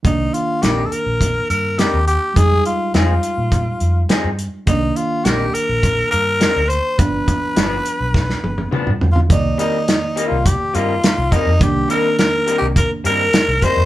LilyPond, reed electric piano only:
\new Staff \with { instrumentName = "Reed electric piano" } { \time 4/4 \key c \minor \tempo 4 = 104 <ees bes d'>1 | <g aes ees'>1 | <ees bes d'>1 | <f b d'>1 |
<ees bes d''>1 | <ees bes d'>1 | }